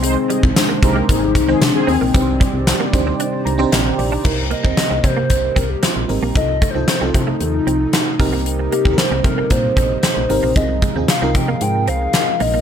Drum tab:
CC |----------------|----------------|x---------------|----------------|
HH |x-x-x-x-x-x-x-o-|x-x-x-x-x-x-x-o-|--x-x-x-x-x-x-o-|x-x-x-x-x-x-x-o-|
TB |----x-------x---|----x-------x---|----------------|----------------|
SD |----o-------o---|----o-------o---|----o-------o---|----o-------o---|
BD |---o--o-o-o-----|o-o---o---------|o--o--o-o-o-----|o-o---o-------o-|

CC |----------------|----------------|
HH |x-x-x-x-x-x-x-o-|x-x-x-x-x-x-x-o-|
TB |----------------|----------------|
SD |----o-------o---|----o-------o---|
BD |---o--o-o-o-----|o-o---o---------|